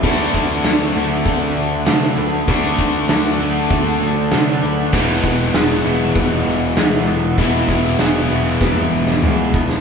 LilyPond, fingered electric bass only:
\new Staff \with { instrumentName = "Fingered electric bass" } { \clef bass \time 4/4 \key d \mixolydian \tempo 4 = 98 d,8 d,8 d,8 d,8 d,8 d,8 c8 d,8 | d,8 d,8 d,8 d,8 d,8 d,8 c8 d,8 | e,,8 e,,8 e,,8 e,,8 e,,8 e,,8 d,8 e,,8 | e,,8 e,,8 e,,8 e,,8 e,,8 e,,8 d,8 e,,8 | }